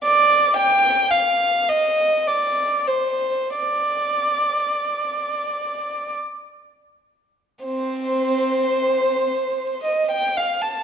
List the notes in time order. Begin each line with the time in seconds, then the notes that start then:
0.04 D5
0.57 G5
1.11 F5
1.69 D#5
2.28 D5
2.87 C5
3.56 D5
7.65 C4 C5
9.84 D#5
10.11 G5
10.37 F5
10.62 A5